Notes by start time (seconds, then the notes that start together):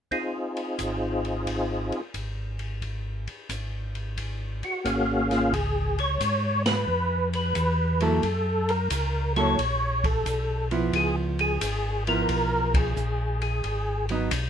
0.11 C4 D#4 F4 G#4, kick, ride
0.57 ride
0.79 G#1, kick, hi-hat pedal, ride
1.25 ride
1.47 kick, ride
1.92 ride
2.14 G#1, kick, hi-hat pedal, ride
2.59 ride
2.82 kick, ride
3.27 ride
3.49 G#1, kick, hi-hat pedal, ride
3.95 ride
4.17 kick, ride
4.63 F#4, ride
4.84 G#1 A#3 C#4 G#4 F5, kick, hi-hat pedal, ride
5.31 F4, snare, ride
5.53 C#2 G#4, kick, ride
5.98 C#5, ride
6.20 G#2, kick, hi-hat pedal, ride
6.66 B4, snare, ride
6.88 F2
7.33 B4, ride
7.55 E2, kick, hi-hat pedal, ride
8.00 F#3 A#3 E4 A4, ride
8.23 F#2, kick, ride
8.69 A#4, ride
8.90 C#2, kick, hi-hat pedal, ride
9.36 F#3 A#3 E4 A4 C#5, ride
9.58 A#1, kick, ride
10.04 A4, kick, ride
10.26 B1, kick, hi-hat pedal, ride
10.71 F3 B3 E4, ride
10.93 C#2 G#4, kick, ride
11.39 G#4, ride
11.61 G#1, kick, hi-hat pedal, ride
12.07 F3 B3 E4 A#4, ride
12.29 B1, kick, ride
12.74 G#4, kick, ride
12.96 A#1, hi-hat pedal
13.42 G#4, ride
13.64 G#1, kick, ride
14.09 F#3 B3 D#4, ride
14.31 B1, kick, hi-hat pedal, ride